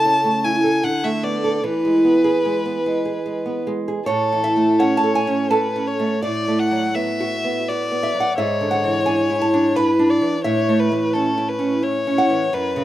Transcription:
0.00 0.80 C#3 medium
0.00 0.17 A4 medium
0.00 0.45 A5 medium
0.05 0.36 C#4 soft
0.24 0.56 A3 medium
0.44 0.76 E4 medium
0.44 0.86 G#5 medium
0.64 0.84 A4 soft
0.83 1.61 D3 medium
0.83 1.06 F#5 medium
1.04 1.36 A3 soft
1.04 1.25 E5 medium
1.23 1.56 B3 soft
1.23 1.65 D5 medium
1.44 1.64 A4 soft
1.64 4.02 E3 medium
1.64 3.66 B4 medium
1.85 2.17 G#3 soft
2.05 2.37 B3 soft
2.24 2.57 G#4 medium
2.45 2.77 G#3 soft
2.66 2.97 B3 soft
2.86 3.18 G#3 soft
3.05 3.37 G#4 soft
3.26 3.58 G#3 soft
3.46 3.78 B3 soft
3.67 3.99 G#3 soft
3.88 4.06 G#4 medium
4.06 6.20 A2 medium
4.06 4.81 A4 medium
4.06 4.42 C#5 medium
4.32 4.71 E3 soft
4.44 4.79 E5 medium
4.56 4.94 A3 soft
4.79 5.18 C#4 medium
4.79 5.53 C#5 medium
4.79 4.97 F#5 medium
4.97 5.15 A5 medium
5.04 5.42 A4 medium
5.15 5.50 G#5 medium
5.27 5.66 C#4 medium
5.51 5.90 A4 medium
5.51 5.89 B4 medium
5.51 6.20 A5 medium
5.76 6.14 C#4 medium
5.87 6.23 C#5 medium
6.00 6.23 A3 soft
6.23 8.34 A2 medium
6.23 7.99 D5 medium
6.23 6.61 D5 medium
6.48 6.86 A3 medium
6.59 6.97 F#5 medium
6.71 7.10 F#3 soft
6.95 7.34 B3 medium
6.95 7.70 E5 medium
7.20 7.58 F#4 medium
7.44 7.82 B3 medium
7.68 8.06 F#4 medium
7.68 8.38 D5 medium
7.92 8.29 B3 soft
8.03 8.20 E5 medium
8.14 8.38 F#3 soft
8.20 8.38 F#5 medium
8.38 10.21 G#2 medium
8.38 9.78 C#5 medium
8.38 8.71 E5 medium
8.61 8.98 D3 soft
8.71 9.05 F#5 medium
8.84 9.21 E3 soft
9.06 9.43 D4 medium
9.06 9.39 G#5 medium
9.30 9.66 E4 medium
9.41 9.74 A5 medium
9.54 9.89 D4 medium
9.76 10.12 E4 medium
9.76 10.11 B4 medium
9.76 10.42 B5 medium
9.99 10.35 D4 medium
10.10 10.43 D5 medium
10.21 10.44 E3 soft
10.44 12.49 A2 medium
10.44 10.81 C#5 medium
10.44 12.14 E5 medium
10.69 10.91 A3 medium
10.79 11.15 B4 medium
10.92 11.28 E3 medium
11.14 11.51 C#4 medium
11.14 11.50 A4 medium
11.38 11.74 E4 medium
11.49 11.85 B4 medium
11.59 11.96 C#4 medium
11.83 12.20 E4 medium
11.83 12.55 C#5 medium
12.07 12.44 C#4 medium
12.18 12.84 F#5 medium
12.30 12.53 E3 medium
12.53 12.84 F#2 medium
12.53 12.84 B4 medium
12.76 12.84 C#3 medium

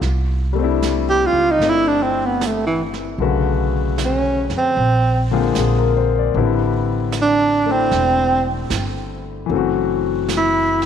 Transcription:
0.00 1.31 C2 medium
0.00 0.19 F4 soft
0.00 brush sweep soft
0.00 snare soft
0.53 3.18 G3 medium
0.53 1.61 A3 soft
0.59 1.62 C4 soft
0.59 1.64 D4 soft
0.64 3.23 E4 medium
0.82 snare soft
0.82 hi-hat pedal soft
1.10 1.28 G4 medium
1.26 1.53 F4 medium
1.33 1.58 C#2 soft
1.51 1.71 D#4 medium
1.59 3.14 G1 medium
1.59 3.20 A3 soft
1.59 brush sweep soft
1.59 snare soft
1.63 3.21 C4 soft
1.63 3.21 D4 soft
1.69 1.89 E4 medium
1.88 2.04 D4 medium
2.03 2.27 C4 medium
2.26 2.48 B3 medium
2.41 snare soft
2.41 hi-hat pedal soft
2.47 2.66 A3 medium
2.66 2.83 E3 medium
2.94 snare soft
3.18 4.47 B1 medium
3.18 4.77 D3 soft
3.18 4.78 A3 soft
3.18 4.78 F#4 medium
3.18 4.78 B4 soft
3.18 brush sweep soft
3.22 4.79 C#3 soft
3.98 snare soft
3.98 hi-hat pedal soft
4.04 4.51 C#4 medium
4.50 4.75 F2 medium
4.50 snare soft
4.58 5.29 C4 medium
4.76 5.52 A#1 medium
4.76 brush sweep soft
5.31 6.34 D3 medium
5.31 6.36 G#3 soft
5.31 6.36 A#3 soft
5.31 6.36 C4 soft
5.31 6.36 F4 medium
5.55 6.31 A#1 medium
5.55 5.94 G#4 soft
5.55 snare soft
5.55 hi-hat pedal soft
5.78 6.11 A#4 soft
5.96 6.20 C5 soft
6.18 6.44 D5 soft
6.34 7.88 A1 medium
6.34 9.51 D3 soft
6.34 9.52 G3 soft
6.34 7.66 C4 soft
6.34 9.51 B4 soft
6.34 brush sweep soft
6.38 7.69 E4 medium
7.12 snare soft
7.12 hi-hat pedal soft
7.22 7.73 D4 medium
7.66 9.50 A3 soft
7.66 9.51 C4 soft
7.66 9.51 D4 soft
7.66 9.52 E4 soft
7.72 8.48 C4 medium
7.91 8.67 E1 medium
7.91 brush sweep soft
7.91 snare soft
8.70 9.46 G1 medium
8.70 snare soft
8.70 hi-hat pedal soft
9.46 10.86 F#1 medium
9.46 10.86 E3 soft
9.46 10.86 F#3 soft
9.51 10.86 A3 soft
9.51 10.86 C4 soft
9.51 brush sweep soft
9.57 10.86 F#4 medium
10.28 snare soft
10.28 hi-hat pedal soft
10.37 10.83 E4 medium
10.82 snare soft

